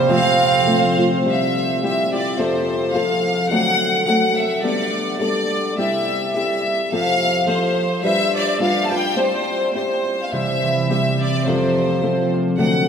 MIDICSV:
0, 0, Header, 1, 5, 480
1, 0, Start_track
1, 0, Key_signature, 0, "major"
1, 0, Tempo, 567108
1, 83, Time_signature, 2, 2, 24, 8
1, 10906, End_track
2, 0, Start_track
2, 0, Title_t, "Violin section"
2, 0, Program_c, 0, 48
2, 99, Note_on_c, 0, 77, 104
2, 607, Note_on_c, 0, 72, 79
2, 844, Note_off_c, 0, 77, 0
2, 1045, Note_off_c, 0, 72, 0
2, 1099, Note_on_c, 0, 76, 82
2, 1558, Note_off_c, 0, 76, 0
2, 1568, Note_on_c, 0, 76, 78
2, 1797, Note_off_c, 0, 76, 0
2, 1816, Note_on_c, 0, 74, 78
2, 2013, Note_off_c, 0, 74, 0
2, 2036, Note_on_c, 0, 72, 73
2, 2494, Note_on_c, 0, 77, 81
2, 2500, Note_off_c, 0, 72, 0
2, 2962, Note_on_c, 0, 78, 107
2, 2967, Note_off_c, 0, 77, 0
2, 3409, Note_off_c, 0, 78, 0
2, 3444, Note_on_c, 0, 78, 80
2, 3685, Note_off_c, 0, 78, 0
2, 3713, Note_on_c, 0, 76, 83
2, 3917, Note_on_c, 0, 74, 84
2, 3928, Note_off_c, 0, 76, 0
2, 4369, Note_off_c, 0, 74, 0
2, 4402, Note_on_c, 0, 74, 85
2, 4859, Note_off_c, 0, 74, 0
2, 4890, Note_on_c, 0, 76, 83
2, 5366, Note_off_c, 0, 76, 0
2, 5376, Note_on_c, 0, 76, 76
2, 5823, Note_off_c, 0, 76, 0
2, 5870, Note_on_c, 0, 77, 106
2, 6304, Note_off_c, 0, 77, 0
2, 6338, Note_on_c, 0, 72, 84
2, 6777, Note_off_c, 0, 72, 0
2, 6810, Note_on_c, 0, 76, 107
2, 7049, Note_off_c, 0, 76, 0
2, 7092, Note_on_c, 0, 74, 93
2, 7295, Note_on_c, 0, 77, 88
2, 7298, Note_off_c, 0, 74, 0
2, 7471, Note_off_c, 0, 77, 0
2, 7491, Note_on_c, 0, 81, 76
2, 7549, Note_off_c, 0, 81, 0
2, 7557, Note_on_c, 0, 79, 97
2, 7765, Note_on_c, 0, 72, 88
2, 7768, Note_off_c, 0, 79, 0
2, 8238, Note_off_c, 0, 72, 0
2, 8248, Note_on_c, 0, 72, 79
2, 8648, Note_off_c, 0, 72, 0
2, 8665, Note_on_c, 0, 77, 54
2, 8726, Note_off_c, 0, 77, 0
2, 8744, Note_on_c, 0, 76, 91
2, 9221, Note_off_c, 0, 76, 0
2, 9236, Note_on_c, 0, 76, 76
2, 9468, Note_off_c, 0, 76, 0
2, 9499, Note_on_c, 0, 74, 84
2, 9708, Note_off_c, 0, 74, 0
2, 9714, Note_on_c, 0, 72, 71
2, 10437, Note_off_c, 0, 72, 0
2, 10655, Note_on_c, 0, 78, 84
2, 10906, Note_off_c, 0, 78, 0
2, 10906, End_track
3, 0, Start_track
3, 0, Title_t, "Nylon-string guitar"
3, 0, Program_c, 1, 24
3, 71, Note_on_c, 1, 41, 56
3, 74, Note_on_c, 1, 48, 57
3, 79, Note_on_c, 1, 53, 72
3, 79, Note_on_c, 1, 57, 59
3, 80, Note_on_c, 1, 60, 64
3, 83, Note_on_c, 1, 65, 76
3, 549, Note_off_c, 1, 53, 0
3, 556, Note_off_c, 1, 57, 0
3, 559, Note_on_c, 1, 53, 60
3, 564, Note_off_c, 1, 41, 0
3, 564, Note_off_c, 1, 65, 0
3, 566, Note_off_c, 1, 48, 0
3, 566, Note_on_c, 1, 57, 62
3, 571, Note_off_c, 1, 60, 0
3, 574, Note_on_c, 1, 60, 60
3, 574, Note_on_c, 1, 65, 61
3, 815, Note_off_c, 1, 65, 0
3, 823, Note_off_c, 1, 60, 0
3, 825, Note_on_c, 1, 65, 46
3, 826, Note_off_c, 1, 57, 0
3, 827, Note_off_c, 1, 53, 0
3, 834, Note_on_c, 1, 60, 41
3, 836, Note_on_c, 1, 57, 41
3, 837, Note_on_c, 1, 53, 40
3, 1054, Note_off_c, 1, 60, 0
3, 1054, Note_off_c, 1, 65, 0
3, 1058, Note_off_c, 1, 53, 0
3, 1059, Note_off_c, 1, 57, 0
3, 1061, Note_on_c, 1, 55, 55
3, 1062, Note_on_c, 1, 48, 54
3, 1064, Note_on_c, 1, 60, 61
3, 1066, Note_on_c, 1, 64, 59
3, 1066, Note_on_c, 1, 67, 58
3, 1536, Note_off_c, 1, 55, 0
3, 1543, Note_off_c, 1, 64, 0
3, 1544, Note_off_c, 1, 48, 0
3, 1545, Note_off_c, 1, 60, 0
3, 1546, Note_off_c, 1, 67, 0
3, 1546, Note_on_c, 1, 55, 58
3, 1548, Note_on_c, 1, 60, 55
3, 1553, Note_on_c, 1, 64, 59
3, 1557, Note_on_c, 1, 67, 61
3, 1791, Note_off_c, 1, 67, 0
3, 1796, Note_off_c, 1, 64, 0
3, 1801, Note_on_c, 1, 67, 46
3, 1803, Note_off_c, 1, 55, 0
3, 1805, Note_off_c, 1, 60, 0
3, 1806, Note_on_c, 1, 64, 38
3, 1814, Note_on_c, 1, 60, 29
3, 2015, Note_off_c, 1, 60, 0
3, 2017, Note_on_c, 1, 41, 58
3, 2019, Note_on_c, 1, 48, 48
3, 2020, Note_off_c, 1, 67, 0
3, 2022, Note_off_c, 1, 64, 0
3, 2023, Note_on_c, 1, 53, 64
3, 2026, Note_on_c, 1, 60, 58
3, 2026, Note_on_c, 1, 65, 66
3, 2029, Note_on_c, 1, 69, 72
3, 2481, Note_off_c, 1, 53, 0
3, 2483, Note_off_c, 1, 65, 0
3, 2484, Note_off_c, 1, 60, 0
3, 2491, Note_off_c, 1, 41, 0
3, 2491, Note_on_c, 1, 53, 60
3, 2492, Note_off_c, 1, 48, 0
3, 2493, Note_on_c, 1, 65, 53
3, 2494, Note_on_c, 1, 60, 56
3, 2498, Note_off_c, 1, 69, 0
3, 2501, Note_on_c, 1, 69, 70
3, 2966, Note_off_c, 1, 53, 0
3, 2967, Note_off_c, 1, 60, 0
3, 2967, Note_off_c, 1, 65, 0
3, 2969, Note_on_c, 1, 50, 69
3, 2973, Note_on_c, 1, 54, 69
3, 2973, Note_on_c, 1, 57, 65
3, 2975, Note_off_c, 1, 69, 0
3, 2979, Note_on_c, 1, 60, 61
3, 2979, Note_on_c, 1, 69, 59
3, 3428, Note_off_c, 1, 54, 0
3, 3438, Note_on_c, 1, 54, 55
3, 3440, Note_off_c, 1, 57, 0
3, 3443, Note_off_c, 1, 60, 0
3, 3446, Note_off_c, 1, 50, 0
3, 3447, Note_off_c, 1, 69, 0
3, 3450, Note_on_c, 1, 57, 60
3, 3453, Note_on_c, 1, 60, 62
3, 3457, Note_on_c, 1, 69, 66
3, 3916, Note_off_c, 1, 54, 0
3, 3918, Note_off_c, 1, 69, 0
3, 3919, Note_off_c, 1, 57, 0
3, 3920, Note_on_c, 1, 55, 68
3, 3922, Note_off_c, 1, 60, 0
3, 3923, Note_on_c, 1, 59, 66
3, 3925, Note_on_c, 1, 62, 64
3, 3928, Note_on_c, 1, 69, 60
3, 4386, Note_off_c, 1, 55, 0
3, 4394, Note_off_c, 1, 59, 0
3, 4397, Note_on_c, 1, 55, 49
3, 4398, Note_off_c, 1, 62, 0
3, 4404, Note_off_c, 1, 69, 0
3, 4405, Note_on_c, 1, 59, 50
3, 4408, Note_on_c, 1, 62, 54
3, 4414, Note_on_c, 1, 69, 59
3, 4882, Note_off_c, 1, 55, 0
3, 4890, Note_off_c, 1, 59, 0
3, 4893, Note_on_c, 1, 55, 52
3, 4894, Note_off_c, 1, 62, 0
3, 4894, Note_on_c, 1, 48, 46
3, 4894, Note_on_c, 1, 60, 55
3, 4896, Note_off_c, 1, 69, 0
3, 4897, Note_on_c, 1, 64, 61
3, 4899, Note_on_c, 1, 67, 59
3, 5367, Note_off_c, 1, 55, 0
3, 5374, Note_off_c, 1, 60, 0
3, 5377, Note_off_c, 1, 64, 0
3, 5378, Note_on_c, 1, 55, 54
3, 5379, Note_off_c, 1, 67, 0
3, 5381, Note_off_c, 1, 48, 0
3, 5384, Note_on_c, 1, 60, 57
3, 5387, Note_on_c, 1, 64, 55
3, 5390, Note_on_c, 1, 67, 59
3, 5855, Note_off_c, 1, 60, 0
3, 5858, Note_off_c, 1, 55, 0
3, 5858, Note_on_c, 1, 41, 50
3, 5860, Note_on_c, 1, 48, 69
3, 5862, Note_off_c, 1, 64, 0
3, 5862, Note_off_c, 1, 67, 0
3, 5864, Note_on_c, 1, 53, 64
3, 5865, Note_on_c, 1, 60, 70
3, 5865, Note_on_c, 1, 65, 50
3, 5865, Note_on_c, 1, 69, 62
3, 6310, Note_off_c, 1, 53, 0
3, 6318, Note_off_c, 1, 60, 0
3, 6320, Note_on_c, 1, 53, 67
3, 6321, Note_off_c, 1, 65, 0
3, 6321, Note_off_c, 1, 69, 0
3, 6328, Note_on_c, 1, 60, 55
3, 6330, Note_off_c, 1, 41, 0
3, 6331, Note_off_c, 1, 48, 0
3, 6331, Note_on_c, 1, 65, 65
3, 6331, Note_on_c, 1, 69, 71
3, 6796, Note_off_c, 1, 65, 0
3, 6800, Note_off_c, 1, 53, 0
3, 6803, Note_on_c, 1, 55, 76
3, 6804, Note_off_c, 1, 60, 0
3, 6806, Note_off_c, 1, 69, 0
3, 6806, Note_on_c, 1, 65, 62
3, 6807, Note_on_c, 1, 62, 63
3, 6812, Note_on_c, 1, 71, 66
3, 7271, Note_off_c, 1, 62, 0
3, 7278, Note_off_c, 1, 55, 0
3, 7278, Note_off_c, 1, 65, 0
3, 7281, Note_on_c, 1, 62, 68
3, 7282, Note_on_c, 1, 55, 55
3, 7285, Note_off_c, 1, 71, 0
3, 7288, Note_on_c, 1, 65, 56
3, 7295, Note_on_c, 1, 71, 66
3, 7537, Note_off_c, 1, 71, 0
3, 7540, Note_off_c, 1, 65, 0
3, 7541, Note_off_c, 1, 55, 0
3, 7541, Note_off_c, 1, 62, 0
3, 7547, Note_on_c, 1, 71, 48
3, 7551, Note_on_c, 1, 65, 39
3, 7566, Note_on_c, 1, 62, 37
3, 7754, Note_on_c, 1, 60, 60
3, 7758, Note_off_c, 1, 62, 0
3, 7762, Note_off_c, 1, 65, 0
3, 7762, Note_on_c, 1, 64, 52
3, 7763, Note_off_c, 1, 71, 0
3, 7766, Note_on_c, 1, 67, 65
3, 7766, Note_on_c, 1, 74, 68
3, 8244, Note_off_c, 1, 60, 0
3, 8244, Note_off_c, 1, 64, 0
3, 8246, Note_off_c, 1, 67, 0
3, 8246, Note_off_c, 1, 74, 0
3, 8247, Note_on_c, 1, 60, 55
3, 8254, Note_on_c, 1, 64, 60
3, 8260, Note_on_c, 1, 67, 56
3, 8263, Note_on_c, 1, 74, 62
3, 8736, Note_off_c, 1, 64, 0
3, 8739, Note_off_c, 1, 67, 0
3, 8741, Note_off_c, 1, 74, 0
3, 8742, Note_off_c, 1, 60, 0
3, 8745, Note_on_c, 1, 55, 54
3, 8747, Note_on_c, 1, 52, 55
3, 8749, Note_on_c, 1, 60, 52
3, 8750, Note_on_c, 1, 48, 46
3, 8752, Note_on_c, 1, 72, 57
3, 8756, Note_on_c, 1, 64, 57
3, 9213, Note_off_c, 1, 55, 0
3, 9222, Note_off_c, 1, 52, 0
3, 9224, Note_off_c, 1, 48, 0
3, 9224, Note_on_c, 1, 55, 49
3, 9225, Note_off_c, 1, 60, 0
3, 9226, Note_off_c, 1, 64, 0
3, 9229, Note_on_c, 1, 60, 49
3, 9235, Note_on_c, 1, 64, 57
3, 9236, Note_off_c, 1, 72, 0
3, 9239, Note_on_c, 1, 72, 57
3, 9701, Note_off_c, 1, 55, 0
3, 9701, Note_on_c, 1, 41, 52
3, 9707, Note_off_c, 1, 60, 0
3, 9707, Note_off_c, 1, 64, 0
3, 9708, Note_on_c, 1, 48, 57
3, 9709, Note_on_c, 1, 53, 62
3, 9710, Note_on_c, 1, 60, 55
3, 9712, Note_off_c, 1, 72, 0
3, 9714, Note_on_c, 1, 65, 62
3, 9716, Note_on_c, 1, 69, 62
3, 10168, Note_off_c, 1, 53, 0
3, 10175, Note_off_c, 1, 60, 0
3, 10176, Note_off_c, 1, 41, 0
3, 10176, Note_off_c, 1, 65, 0
3, 10178, Note_on_c, 1, 53, 52
3, 10179, Note_off_c, 1, 48, 0
3, 10185, Note_on_c, 1, 60, 61
3, 10186, Note_on_c, 1, 65, 53
3, 10187, Note_off_c, 1, 69, 0
3, 10190, Note_on_c, 1, 69, 65
3, 10644, Note_off_c, 1, 53, 0
3, 10644, Note_off_c, 1, 60, 0
3, 10646, Note_on_c, 1, 50, 56
3, 10647, Note_on_c, 1, 54, 62
3, 10651, Note_off_c, 1, 65, 0
3, 10652, Note_on_c, 1, 57, 58
3, 10654, Note_on_c, 1, 60, 58
3, 10655, Note_off_c, 1, 69, 0
3, 10658, Note_on_c, 1, 69, 59
3, 10906, Note_off_c, 1, 50, 0
3, 10906, Note_off_c, 1, 54, 0
3, 10906, Note_off_c, 1, 57, 0
3, 10906, Note_off_c, 1, 60, 0
3, 10906, Note_off_c, 1, 69, 0
3, 10906, End_track
4, 0, Start_track
4, 0, Title_t, "Trumpet"
4, 0, Program_c, 2, 56
4, 0, Note_on_c, 2, 55, 72
4, 102, Note_on_c, 2, 60, 77
4, 114, Note_off_c, 2, 55, 0
4, 845, Note_off_c, 2, 60, 0
4, 10906, End_track
5, 0, Start_track
5, 0, Title_t, "Harp"
5, 0, Program_c, 3, 46
5, 0, Note_on_c, 3, 48, 89
5, 0, Note_on_c, 3, 55, 77
5, 0, Note_on_c, 3, 58, 71
5, 0, Note_on_c, 3, 60, 56
5, 75, Note_on_c, 3, 53, 81
5, 125, Note_off_c, 3, 48, 0
5, 125, Note_off_c, 3, 55, 0
5, 341, Note_on_c, 3, 57, 71
5, 391, Note_off_c, 3, 58, 0
5, 575, Note_off_c, 3, 60, 0
5, 579, Note_on_c, 3, 60, 67
5, 844, Note_on_c, 3, 65, 58
5, 1102, Note_off_c, 3, 53, 0
5, 2979, Note_off_c, 3, 65, 0
5, 3118, Note_off_c, 3, 60, 0
5, 3158, Note_off_c, 3, 57, 0
5, 8735, Note_on_c, 3, 48, 78
5, 8990, Note_on_c, 3, 52, 62
5, 9217, Note_on_c, 3, 55, 53
5, 9488, Note_on_c, 3, 60, 69
5, 9707, Note_on_c, 3, 53, 68
5, 9738, Note_off_c, 3, 52, 0
5, 9738, Note_off_c, 3, 55, 0
5, 9739, Note_off_c, 3, 48, 0
5, 9972, Note_on_c, 3, 57, 71
5, 10190, Note_off_c, 3, 60, 0
5, 10194, Note_on_c, 3, 60, 65
5, 10442, Note_on_c, 3, 65, 72
5, 10655, Note_on_c, 3, 50, 72
5, 10687, Note_off_c, 3, 53, 0
5, 10906, Note_off_c, 3, 50, 0
5, 10906, Note_off_c, 3, 57, 0
5, 10906, Note_off_c, 3, 60, 0
5, 10906, Note_off_c, 3, 65, 0
5, 10906, End_track
0, 0, End_of_file